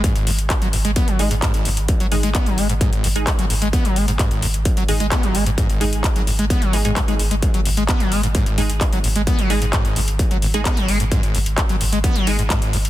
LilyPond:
<<
  \new Staff \with { instrumentName = "Synth stab" } { \time 4/4 \key gis \minor \tempo 4 = 130 r2 r8 <gis dis' gis'>16 r4 r16 | r8 <gis dis' gis'>8 r4. r16 <gis dis' gis'>8 r8. | r2 r8 <gis dis' gis'>16 r4 r16 | r8 <gis dis' gis'>8 r4. <gis dis' gis'>16 <gis dis' gis'>16 r16 <gis dis' gis'>16 r8 |
r2 r8 <gis dis' gis'>16 r4 r16 | r8 <gis dis' gis'>8 r4. r16 <gis dis' gis'>8 r8. | r2 r8 <gis dis' gis'>16 r4 r16 | }
  \new Staff \with { instrumentName = "Acid bass" } { \clef bass \time 4/4 \key gis \minor gis,16 gis,,16 b,16 r8 fis16 gis,,16 gis16 b16 fis16 gis16 gis,16 gis,16 gis,,16 b,16 r16 | r16 fis16 gis,,16 gis16 b16 fis16 gis16 gis,16 gis,16 gis,,16 b,16 r8 fis16 gis,,16 gis16 | b16 fis16 gis16 gis,16 gis,16 gis,,16 b,16 r8 fis16 gis,,16 gis16 b16 fis16 gis16 gis,16 | gis,16 gis,,16 b,16 r8 fis16 gis,,16 gis16 b16 fis16 dis16 gis,16 gis,16 gis16 r16 gis16 |
r16 fis16 gis,,16 gis16 b16 fis16 gis16 gis,16 gis,16 gis,,16 b,16 r8 fis16 gis,,16 gis16 | b16 fis16 gis16 gis,16 gis,16 gis,,16 b,16 r8 fis16 gis,,16 gis16 b16 fis16 gis16 gis,16 | gis,16 gis,,16 b,16 r8 fis16 gis,,16 gis16 b16 fis16 gis16 gis,16 gis,16 gis,,16 b,16 r16 | }
  \new Staff \with { instrumentName = "Sub bass" } { \clef bass \time 4/4 \key gis \minor r16 gis,,16 gis,,16 gis,,16 r16 gis,,16 gis,,16 gis,,16 r16 gis,,16 gis,,16 gis,,16 r16 gis,,16 gis,,16 gis,,16 | r16 gis,,16 gis,,16 gis,,16 r16 gis,,16 gis,,16 gis,,16 r16 gis,,16 gis,,16 gis,,16 r16 gis,,16 gis,,16 gis,,16 | r16 gis,,16 gis,,16 gis,,16 r16 gis,,16 gis,,16 gis,,16 r16 gis,,16 gis,,16 gis,,16 r16 gis,,16 gis,,16 gis,,16 | r16 gis,,16 gis,,16 gis,,16 r16 gis,,16 gis,,16 gis,,16 r16 gis,,16 gis,,16 gis,,16 r16 gis,,16 gis,,16 gis,,16 |
r16 gis,,16 gis,,16 gis,,16 r16 gis,,16 gis,,16 gis,,16 r16 gis,,16 gis,,16 gis,,16 r16 gis,,16 gis,,16 gis,,16 | r16 gis,,16 gis,,16 gis,,16 r16 gis,,16 gis,,16 gis,,16 r16 gis,,16 gis,,16 gis,,16 r16 gis,,16 gis,,16 gis,,16 | r16 gis,,16 gis,,16 gis,,16 r16 gis,,16 gis,,16 gis,,16 r16 gis,,16 gis,,16 gis,,16 r16 gis,,16 gis,,16 gis,,16 | }
  \new DrumStaff \with { instrumentName = "Drums" } \drummode { \time 4/4 <hh bd>16 hh16 hho16 hh16 <hc hh bd>16 hh16 hho16 hh16 <hh bd>16 hh16 hho16 hh16 <hc hh bd>16 hh16 hho16 hh16 | <hh bd>16 hh16 hho16 hh16 <hc hh bd>16 hh16 hho16 hh16 <hh bd>16 hh16 hho16 hh16 <hc hh bd>16 hh16 hho16 hh16 | <hh bd>16 hh16 hho16 hh16 <hc hh bd>16 hh16 hho16 hh16 <hh bd>16 hh16 hho16 hh16 <hc hh bd>16 hh16 hho16 hh16 | <hh bd>16 hh16 hho16 hh16 <hc hh bd>16 hh16 hho16 hh16 <hh bd>16 hh16 hho16 hh16 <hc hh bd>16 hh16 hho16 hh16 |
<hh bd>16 hh16 hho16 hh16 <hc hh bd>16 hh16 hho16 hh16 <hh bd>16 hh16 hho16 hh16 <hc hh bd>16 hh16 hho16 hh16 | <hh bd>16 hh16 hho16 hh16 <hc hh bd>16 hh16 hho16 hh16 <hh bd>16 hh16 hho16 hh16 <hc hh bd>16 hh16 hho16 hh16 | <hh bd>16 hh16 hho16 hh16 <hc hh bd>16 hh16 hho16 hh16 <hh bd>16 hh16 hho16 hh16 <hc hh bd>16 hh16 hho16 hh16 | }
>>